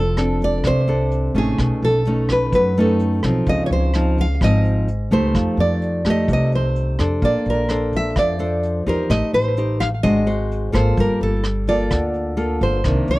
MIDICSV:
0, 0, Header, 1, 5, 480
1, 0, Start_track
1, 0, Tempo, 469484
1, 1616, Time_signature, 4, 2, 24, 8
1, 13485, End_track
2, 0, Start_track
2, 0, Title_t, "Nylon-string guitar"
2, 0, Program_c, 0, 24
2, 0, Note_on_c, 0, 69, 86
2, 440, Note_off_c, 0, 69, 0
2, 451, Note_on_c, 0, 74, 90
2, 679, Note_off_c, 0, 74, 0
2, 686, Note_on_c, 0, 72, 88
2, 1405, Note_off_c, 0, 72, 0
2, 1409, Note_on_c, 0, 68, 79
2, 1883, Note_off_c, 0, 68, 0
2, 1887, Note_on_c, 0, 69, 77
2, 2368, Note_off_c, 0, 69, 0
2, 2373, Note_on_c, 0, 71, 78
2, 2595, Note_off_c, 0, 71, 0
2, 2608, Note_on_c, 0, 71, 74
2, 2841, Note_off_c, 0, 71, 0
2, 2866, Note_on_c, 0, 69, 69
2, 3292, Note_off_c, 0, 69, 0
2, 3572, Note_on_c, 0, 75, 85
2, 3730, Note_off_c, 0, 75, 0
2, 3744, Note_on_c, 0, 73, 66
2, 3799, Note_off_c, 0, 73, 0
2, 3809, Note_on_c, 0, 72, 86
2, 4290, Note_off_c, 0, 72, 0
2, 4301, Note_on_c, 0, 77, 89
2, 4529, Note_off_c, 0, 77, 0
2, 4540, Note_on_c, 0, 75, 86
2, 5242, Note_off_c, 0, 75, 0
2, 5246, Note_on_c, 0, 72, 83
2, 5725, Note_off_c, 0, 72, 0
2, 5729, Note_on_c, 0, 74, 81
2, 6210, Note_off_c, 0, 74, 0
2, 6238, Note_on_c, 0, 75, 76
2, 6457, Note_off_c, 0, 75, 0
2, 6474, Note_on_c, 0, 75, 79
2, 6695, Note_off_c, 0, 75, 0
2, 6700, Note_on_c, 0, 72, 67
2, 7129, Note_off_c, 0, 72, 0
2, 7410, Note_on_c, 0, 74, 82
2, 7642, Note_off_c, 0, 74, 0
2, 7667, Note_on_c, 0, 70, 80
2, 8137, Note_off_c, 0, 70, 0
2, 8144, Note_on_c, 0, 76, 84
2, 8368, Note_off_c, 0, 76, 0
2, 8372, Note_on_c, 0, 74, 81
2, 9091, Note_on_c, 0, 70, 74
2, 9095, Note_off_c, 0, 74, 0
2, 9310, Note_on_c, 0, 75, 89
2, 9320, Note_off_c, 0, 70, 0
2, 9547, Note_off_c, 0, 75, 0
2, 9551, Note_on_c, 0, 72, 88
2, 10018, Note_off_c, 0, 72, 0
2, 10022, Note_on_c, 0, 77, 89
2, 10086, Note_off_c, 0, 77, 0
2, 10257, Note_on_c, 0, 75, 92
2, 10988, Note_off_c, 0, 75, 0
2, 10992, Note_on_c, 0, 72, 78
2, 11229, Note_off_c, 0, 72, 0
2, 11249, Note_on_c, 0, 70, 80
2, 11476, Note_off_c, 0, 70, 0
2, 11481, Note_on_c, 0, 69, 83
2, 11949, Note_on_c, 0, 74, 92
2, 11959, Note_off_c, 0, 69, 0
2, 12907, Note_off_c, 0, 74, 0
2, 12912, Note_on_c, 0, 72, 76
2, 13394, Note_off_c, 0, 72, 0
2, 13401, Note_on_c, 0, 74, 83
2, 13485, Note_off_c, 0, 74, 0
2, 13485, End_track
3, 0, Start_track
3, 0, Title_t, "Nylon-string guitar"
3, 0, Program_c, 1, 24
3, 0, Note_on_c, 1, 53, 49
3, 172, Note_on_c, 1, 60, 49
3, 175, Note_on_c, 1, 62, 52
3, 181, Note_on_c, 1, 69, 57
3, 627, Note_off_c, 1, 53, 0
3, 652, Note_on_c, 1, 48, 55
3, 856, Note_off_c, 1, 60, 0
3, 857, Note_off_c, 1, 62, 0
3, 860, Note_off_c, 1, 69, 0
3, 895, Note_on_c, 1, 60, 60
3, 903, Note_on_c, 1, 62, 56
3, 908, Note_on_c, 1, 69, 60
3, 1338, Note_off_c, 1, 60, 0
3, 1342, Note_off_c, 1, 62, 0
3, 1344, Note_off_c, 1, 69, 0
3, 1379, Note_on_c, 1, 57, 55
3, 1386, Note_on_c, 1, 61, 53
3, 1389, Note_on_c, 1, 63, 64
3, 1592, Note_off_c, 1, 48, 0
3, 1627, Note_on_c, 1, 47, 51
3, 2061, Note_off_c, 1, 57, 0
3, 2065, Note_off_c, 1, 63, 0
3, 2066, Note_off_c, 1, 61, 0
3, 2114, Note_on_c, 1, 57, 53
3, 2119, Note_on_c, 1, 61, 49
3, 2122, Note_on_c, 1, 63, 57
3, 2561, Note_off_c, 1, 47, 0
3, 2594, Note_on_c, 1, 54, 51
3, 2790, Note_off_c, 1, 57, 0
3, 2792, Note_off_c, 1, 61, 0
3, 2794, Note_off_c, 1, 63, 0
3, 2838, Note_on_c, 1, 57, 62
3, 2842, Note_on_c, 1, 61, 60
3, 2849, Note_on_c, 1, 63, 66
3, 3272, Note_off_c, 1, 57, 0
3, 3274, Note_off_c, 1, 61, 0
3, 3275, Note_off_c, 1, 63, 0
3, 3314, Note_on_c, 1, 53, 64
3, 3315, Note_on_c, 1, 60, 59
3, 3321, Note_on_c, 1, 63, 62
3, 3525, Note_off_c, 1, 54, 0
3, 3553, Note_on_c, 1, 49, 50
3, 3990, Note_off_c, 1, 60, 0
3, 3991, Note_off_c, 1, 53, 0
3, 3994, Note_off_c, 1, 63, 0
3, 4036, Note_on_c, 1, 53, 56
3, 4040, Note_on_c, 1, 60, 47
3, 4043, Note_on_c, 1, 63, 56
3, 4340, Note_off_c, 1, 53, 0
3, 4340, Note_off_c, 1, 60, 0
3, 4343, Note_off_c, 1, 63, 0
3, 4485, Note_off_c, 1, 49, 0
3, 4516, Note_on_c, 1, 44, 51
3, 4521, Note_on_c, 1, 53, 53
3, 4523, Note_on_c, 1, 60, 55
3, 4528, Note_on_c, 1, 63, 61
3, 4989, Note_off_c, 1, 60, 0
3, 4990, Note_off_c, 1, 53, 0
3, 4990, Note_off_c, 1, 63, 0
3, 5230, Note_on_c, 1, 57, 63
3, 5237, Note_on_c, 1, 63, 60
3, 5237, Note_on_c, 1, 67, 62
3, 5448, Note_off_c, 1, 44, 0
3, 5464, Note_on_c, 1, 53, 51
3, 6149, Note_off_c, 1, 57, 0
3, 6150, Note_off_c, 1, 63, 0
3, 6151, Note_off_c, 1, 67, 0
3, 6188, Note_on_c, 1, 57, 49
3, 6192, Note_on_c, 1, 63, 54
3, 6197, Note_on_c, 1, 67, 53
3, 6399, Note_off_c, 1, 53, 0
3, 6428, Note_on_c, 1, 48, 51
3, 7106, Note_off_c, 1, 57, 0
3, 7109, Note_off_c, 1, 63, 0
3, 7109, Note_off_c, 1, 67, 0
3, 7149, Note_on_c, 1, 62, 55
3, 7156, Note_on_c, 1, 69, 56
3, 7162, Note_on_c, 1, 72, 57
3, 7360, Note_off_c, 1, 48, 0
3, 7382, Note_on_c, 1, 58, 50
3, 7826, Note_off_c, 1, 62, 0
3, 7829, Note_off_c, 1, 69, 0
3, 7831, Note_off_c, 1, 72, 0
3, 7875, Note_on_c, 1, 62, 49
3, 7880, Note_on_c, 1, 72, 51
3, 7881, Note_on_c, 1, 69, 55
3, 8316, Note_off_c, 1, 58, 0
3, 8344, Note_on_c, 1, 53, 55
3, 8548, Note_off_c, 1, 62, 0
3, 8550, Note_off_c, 1, 69, 0
3, 8550, Note_off_c, 1, 72, 0
3, 8580, Note_on_c, 1, 62, 60
3, 8586, Note_on_c, 1, 69, 58
3, 8590, Note_on_c, 1, 72, 65
3, 9020, Note_off_c, 1, 62, 0
3, 9023, Note_off_c, 1, 69, 0
3, 9023, Note_off_c, 1, 72, 0
3, 9065, Note_on_c, 1, 63, 57
3, 9073, Note_on_c, 1, 67, 60
3, 9078, Note_on_c, 1, 72, 58
3, 9275, Note_off_c, 1, 53, 0
3, 9300, Note_on_c, 1, 57, 50
3, 9742, Note_off_c, 1, 63, 0
3, 9744, Note_off_c, 1, 67, 0
3, 9744, Note_off_c, 1, 72, 0
3, 9790, Note_on_c, 1, 63, 49
3, 9795, Note_on_c, 1, 67, 55
3, 9797, Note_on_c, 1, 72, 58
3, 10105, Note_off_c, 1, 63, 0
3, 10106, Note_off_c, 1, 67, 0
3, 10108, Note_off_c, 1, 72, 0
3, 10232, Note_off_c, 1, 57, 0
3, 10258, Note_on_c, 1, 56, 53
3, 10260, Note_on_c, 1, 62, 54
3, 10262, Note_on_c, 1, 66, 53
3, 10268, Note_on_c, 1, 72, 56
3, 10457, Note_off_c, 1, 62, 0
3, 10460, Note_off_c, 1, 66, 0
3, 10461, Note_off_c, 1, 72, 0
3, 10496, Note_on_c, 1, 66, 59
3, 10500, Note_on_c, 1, 72, 66
3, 10936, Note_off_c, 1, 66, 0
3, 10937, Note_off_c, 1, 72, 0
3, 10965, Note_on_c, 1, 58, 60
3, 10973, Note_on_c, 1, 65, 60
3, 10973, Note_on_c, 1, 69, 65
3, 11191, Note_off_c, 1, 56, 0
3, 11217, Note_on_c, 1, 55, 55
3, 11649, Note_off_c, 1, 58, 0
3, 11652, Note_off_c, 1, 69, 0
3, 11653, Note_off_c, 1, 65, 0
3, 11945, Note_on_c, 1, 58, 53
3, 11948, Note_on_c, 1, 65, 51
3, 11953, Note_on_c, 1, 69, 59
3, 12149, Note_off_c, 1, 55, 0
3, 12176, Note_on_c, 1, 50, 52
3, 12619, Note_off_c, 1, 58, 0
3, 12620, Note_off_c, 1, 65, 0
3, 12622, Note_off_c, 1, 69, 0
3, 12646, Note_on_c, 1, 65, 52
3, 12647, Note_on_c, 1, 58, 51
3, 12652, Note_on_c, 1, 69, 57
3, 13088, Note_off_c, 1, 65, 0
3, 13090, Note_off_c, 1, 58, 0
3, 13092, Note_off_c, 1, 69, 0
3, 13108, Note_off_c, 1, 50, 0
3, 13138, Note_on_c, 1, 48, 52
3, 13144, Note_on_c, 1, 51, 55
3, 13145, Note_on_c, 1, 58, 53
3, 13148, Note_on_c, 1, 62, 54
3, 13485, Note_off_c, 1, 48, 0
3, 13485, Note_off_c, 1, 51, 0
3, 13485, Note_off_c, 1, 58, 0
3, 13485, Note_off_c, 1, 62, 0
3, 13485, End_track
4, 0, Start_track
4, 0, Title_t, "Upright bass"
4, 0, Program_c, 2, 32
4, 0, Note_on_c, 2, 29, 76
4, 617, Note_off_c, 2, 29, 0
4, 658, Note_on_c, 2, 36, 84
4, 1337, Note_off_c, 2, 36, 0
4, 1374, Note_on_c, 2, 33, 74
4, 1599, Note_off_c, 2, 33, 0
4, 1623, Note_on_c, 2, 35, 82
4, 1732, Note_off_c, 2, 35, 0
4, 1864, Note_on_c, 2, 35, 77
4, 2542, Note_off_c, 2, 35, 0
4, 2583, Note_on_c, 2, 42, 89
4, 3262, Note_off_c, 2, 42, 0
4, 3304, Note_on_c, 2, 35, 80
4, 3527, Note_off_c, 2, 35, 0
4, 3543, Note_on_c, 2, 37, 82
4, 3655, Note_off_c, 2, 37, 0
4, 3786, Note_on_c, 2, 37, 78
4, 4464, Note_off_c, 2, 37, 0
4, 4504, Note_on_c, 2, 32, 83
4, 5183, Note_off_c, 2, 32, 0
4, 5224, Note_on_c, 2, 37, 82
4, 5447, Note_off_c, 2, 37, 0
4, 5467, Note_on_c, 2, 41, 82
4, 5577, Note_off_c, 2, 41, 0
4, 5697, Note_on_c, 2, 41, 76
4, 6379, Note_off_c, 2, 41, 0
4, 6425, Note_on_c, 2, 36, 88
4, 7102, Note_off_c, 2, 36, 0
4, 7146, Note_on_c, 2, 41, 79
4, 7367, Note_off_c, 2, 41, 0
4, 7384, Note_on_c, 2, 34, 80
4, 7494, Note_off_c, 2, 34, 0
4, 7625, Note_on_c, 2, 34, 75
4, 8301, Note_off_c, 2, 34, 0
4, 8342, Note_on_c, 2, 41, 88
4, 9018, Note_off_c, 2, 41, 0
4, 9065, Note_on_c, 2, 40, 76
4, 9284, Note_off_c, 2, 40, 0
4, 9303, Note_on_c, 2, 33, 89
4, 9411, Note_off_c, 2, 33, 0
4, 9543, Note_on_c, 2, 33, 79
4, 10217, Note_off_c, 2, 33, 0
4, 10262, Note_on_c, 2, 32, 87
4, 10936, Note_off_c, 2, 32, 0
4, 10981, Note_on_c, 2, 32, 83
4, 11200, Note_off_c, 2, 32, 0
4, 11222, Note_on_c, 2, 31, 84
4, 11329, Note_off_c, 2, 31, 0
4, 11460, Note_on_c, 2, 31, 82
4, 12134, Note_off_c, 2, 31, 0
4, 12178, Note_on_c, 2, 38, 87
4, 12853, Note_off_c, 2, 38, 0
4, 12894, Note_on_c, 2, 31, 81
4, 13115, Note_off_c, 2, 31, 0
4, 13135, Note_on_c, 2, 36, 82
4, 13244, Note_off_c, 2, 36, 0
4, 13371, Note_on_c, 2, 36, 75
4, 13485, Note_off_c, 2, 36, 0
4, 13485, End_track
5, 0, Start_track
5, 0, Title_t, "Drums"
5, 175, Note_on_c, 9, 37, 54
5, 175, Note_on_c, 9, 42, 41
5, 277, Note_off_c, 9, 37, 0
5, 277, Note_off_c, 9, 42, 0
5, 417, Note_on_c, 9, 36, 22
5, 424, Note_on_c, 9, 42, 27
5, 519, Note_off_c, 9, 36, 0
5, 526, Note_off_c, 9, 42, 0
5, 651, Note_on_c, 9, 37, 52
5, 651, Note_on_c, 9, 42, 43
5, 655, Note_on_c, 9, 36, 54
5, 753, Note_off_c, 9, 37, 0
5, 753, Note_off_c, 9, 42, 0
5, 757, Note_off_c, 9, 36, 0
5, 893, Note_on_c, 9, 42, 26
5, 995, Note_off_c, 9, 42, 0
5, 1137, Note_on_c, 9, 42, 38
5, 1239, Note_off_c, 9, 42, 0
5, 1378, Note_on_c, 9, 36, 22
5, 1380, Note_on_c, 9, 42, 27
5, 1480, Note_off_c, 9, 36, 0
5, 1482, Note_off_c, 9, 42, 0
5, 1619, Note_on_c, 9, 36, 51
5, 1621, Note_on_c, 9, 37, 53
5, 1621, Note_on_c, 9, 42, 39
5, 1721, Note_off_c, 9, 36, 0
5, 1723, Note_off_c, 9, 37, 0
5, 1723, Note_off_c, 9, 42, 0
5, 1864, Note_on_c, 9, 42, 23
5, 1966, Note_off_c, 9, 42, 0
5, 2097, Note_on_c, 9, 42, 38
5, 2200, Note_off_c, 9, 42, 0
5, 2339, Note_on_c, 9, 37, 57
5, 2339, Note_on_c, 9, 42, 26
5, 2341, Note_on_c, 9, 36, 24
5, 2441, Note_off_c, 9, 37, 0
5, 2441, Note_off_c, 9, 42, 0
5, 2444, Note_off_c, 9, 36, 0
5, 2582, Note_on_c, 9, 36, 53
5, 2582, Note_on_c, 9, 42, 39
5, 2684, Note_off_c, 9, 36, 0
5, 2684, Note_off_c, 9, 42, 0
5, 2828, Note_on_c, 9, 42, 23
5, 2930, Note_off_c, 9, 42, 0
5, 3063, Note_on_c, 9, 42, 39
5, 3165, Note_off_c, 9, 42, 0
5, 3302, Note_on_c, 9, 37, 56
5, 3302, Note_on_c, 9, 42, 26
5, 3304, Note_on_c, 9, 36, 23
5, 3404, Note_off_c, 9, 37, 0
5, 3404, Note_off_c, 9, 42, 0
5, 3407, Note_off_c, 9, 36, 0
5, 3540, Note_on_c, 9, 42, 39
5, 3546, Note_on_c, 9, 36, 55
5, 3642, Note_off_c, 9, 42, 0
5, 3648, Note_off_c, 9, 36, 0
5, 3789, Note_on_c, 9, 42, 25
5, 3891, Note_off_c, 9, 42, 0
5, 4025, Note_on_c, 9, 37, 54
5, 4025, Note_on_c, 9, 42, 40
5, 4127, Note_off_c, 9, 37, 0
5, 4127, Note_off_c, 9, 42, 0
5, 4269, Note_on_c, 9, 36, 23
5, 4274, Note_on_c, 9, 42, 26
5, 4371, Note_off_c, 9, 36, 0
5, 4377, Note_off_c, 9, 42, 0
5, 4508, Note_on_c, 9, 36, 58
5, 4515, Note_on_c, 9, 37, 54
5, 4515, Note_on_c, 9, 42, 40
5, 4611, Note_off_c, 9, 36, 0
5, 4617, Note_off_c, 9, 37, 0
5, 4617, Note_off_c, 9, 42, 0
5, 4751, Note_on_c, 9, 42, 27
5, 4853, Note_off_c, 9, 42, 0
5, 4989, Note_on_c, 9, 42, 42
5, 5091, Note_off_c, 9, 42, 0
5, 5228, Note_on_c, 9, 36, 22
5, 5229, Note_on_c, 9, 42, 28
5, 5330, Note_off_c, 9, 36, 0
5, 5331, Note_off_c, 9, 42, 0
5, 5466, Note_on_c, 9, 36, 55
5, 5469, Note_on_c, 9, 37, 58
5, 5469, Note_on_c, 9, 42, 43
5, 5568, Note_off_c, 9, 36, 0
5, 5572, Note_off_c, 9, 37, 0
5, 5572, Note_off_c, 9, 42, 0
5, 5713, Note_on_c, 9, 42, 27
5, 5815, Note_off_c, 9, 42, 0
5, 5946, Note_on_c, 9, 42, 38
5, 6049, Note_off_c, 9, 42, 0
5, 6182, Note_on_c, 9, 36, 22
5, 6184, Note_on_c, 9, 37, 55
5, 6184, Note_on_c, 9, 42, 27
5, 6284, Note_off_c, 9, 36, 0
5, 6287, Note_off_c, 9, 37, 0
5, 6287, Note_off_c, 9, 42, 0
5, 6424, Note_on_c, 9, 36, 56
5, 6426, Note_on_c, 9, 42, 38
5, 6526, Note_off_c, 9, 36, 0
5, 6529, Note_off_c, 9, 42, 0
5, 6666, Note_on_c, 9, 42, 25
5, 6768, Note_off_c, 9, 42, 0
5, 6907, Note_on_c, 9, 42, 37
5, 7010, Note_off_c, 9, 42, 0
5, 7143, Note_on_c, 9, 36, 23
5, 7145, Note_on_c, 9, 37, 58
5, 7145, Note_on_c, 9, 42, 25
5, 7245, Note_off_c, 9, 36, 0
5, 7247, Note_off_c, 9, 37, 0
5, 7247, Note_off_c, 9, 42, 0
5, 7383, Note_on_c, 9, 36, 57
5, 7383, Note_on_c, 9, 42, 39
5, 7485, Note_off_c, 9, 36, 0
5, 7486, Note_off_c, 9, 42, 0
5, 7622, Note_on_c, 9, 42, 23
5, 7724, Note_off_c, 9, 42, 0
5, 7859, Note_on_c, 9, 37, 52
5, 7859, Note_on_c, 9, 42, 39
5, 7962, Note_off_c, 9, 37, 0
5, 7962, Note_off_c, 9, 42, 0
5, 8102, Note_on_c, 9, 36, 22
5, 8105, Note_on_c, 9, 42, 25
5, 8204, Note_off_c, 9, 36, 0
5, 8207, Note_off_c, 9, 42, 0
5, 8342, Note_on_c, 9, 37, 53
5, 8342, Note_on_c, 9, 42, 39
5, 8343, Note_on_c, 9, 36, 57
5, 8444, Note_off_c, 9, 37, 0
5, 8444, Note_off_c, 9, 42, 0
5, 8445, Note_off_c, 9, 36, 0
5, 8586, Note_on_c, 9, 42, 27
5, 8689, Note_off_c, 9, 42, 0
5, 8825, Note_on_c, 9, 42, 42
5, 8928, Note_off_c, 9, 42, 0
5, 9063, Note_on_c, 9, 36, 23
5, 9066, Note_on_c, 9, 42, 27
5, 9166, Note_off_c, 9, 36, 0
5, 9169, Note_off_c, 9, 42, 0
5, 9302, Note_on_c, 9, 36, 55
5, 9305, Note_on_c, 9, 37, 59
5, 9305, Note_on_c, 9, 42, 41
5, 9405, Note_off_c, 9, 36, 0
5, 9407, Note_off_c, 9, 37, 0
5, 9407, Note_off_c, 9, 42, 0
5, 9544, Note_on_c, 9, 42, 28
5, 9646, Note_off_c, 9, 42, 0
5, 9782, Note_on_c, 9, 42, 40
5, 9884, Note_off_c, 9, 42, 0
5, 10022, Note_on_c, 9, 36, 24
5, 10026, Note_on_c, 9, 37, 53
5, 10026, Note_on_c, 9, 42, 26
5, 10124, Note_off_c, 9, 36, 0
5, 10128, Note_off_c, 9, 37, 0
5, 10128, Note_off_c, 9, 42, 0
5, 10263, Note_on_c, 9, 36, 55
5, 10263, Note_on_c, 9, 42, 39
5, 10365, Note_off_c, 9, 36, 0
5, 10365, Note_off_c, 9, 42, 0
5, 10506, Note_on_c, 9, 42, 26
5, 10609, Note_off_c, 9, 42, 0
5, 10751, Note_on_c, 9, 42, 38
5, 10853, Note_off_c, 9, 42, 0
5, 10982, Note_on_c, 9, 36, 24
5, 10986, Note_on_c, 9, 37, 57
5, 10986, Note_on_c, 9, 42, 26
5, 11084, Note_off_c, 9, 36, 0
5, 11089, Note_off_c, 9, 37, 0
5, 11089, Note_off_c, 9, 42, 0
5, 11221, Note_on_c, 9, 36, 56
5, 11222, Note_on_c, 9, 42, 39
5, 11323, Note_off_c, 9, 36, 0
5, 11324, Note_off_c, 9, 42, 0
5, 11457, Note_on_c, 9, 42, 25
5, 11559, Note_off_c, 9, 42, 0
5, 11693, Note_on_c, 9, 37, 55
5, 11693, Note_on_c, 9, 42, 37
5, 11795, Note_off_c, 9, 37, 0
5, 11795, Note_off_c, 9, 42, 0
5, 11933, Note_on_c, 9, 42, 26
5, 11936, Note_on_c, 9, 36, 24
5, 12035, Note_off_c, 9, 42, 0
5, 12038, Note_off_c, 9, 36, 0
5, 12174, Note_on_c, 9, 37, 57
5, 12174, Note_on_c, 9, 42, 39
5, 12176, Note_on_c, 9, 36, 55
5, 12276, Note_off_c, 9, 37, 0
5, 12276, Note_off_c, 9, 42, 0
5, 12279, Note_off_c, 9, 36, 0
5, 12410, Note_on_c, 9, 42, 26
5, 12512, Note_off_c, 9, 42, 0
5, 12650, Note_on_c, 9, 42, 40
5, 12752, Note_off_c, 9, 42, 0
5, 12892, Note_on_c, 9, 42, 26
5, 12893, Note_on_c, 9, 36, 22
5, 12994, Note_off_c, 9, 42, 0
5, 12995, Note_off_c, 9, 36, 0
5, 13130, Note_on_c, 9, 37, 55
5, 13130, Note_on_c, 9, 42, 41
5, 13133, Note_on_c, 9, 36, 55
5, 13232, Note_off_c, 9, 37, 0
5, 13232, Note_off_c, 9, 42, 0
5, 13235, Note_off_c, 9, 36, 0
5, 13367, Note_on_c, 9, 42, 26
5, 13470, Note_off_c, 9, 42, 0
5, 13485, End_track
0, 0, End_of_file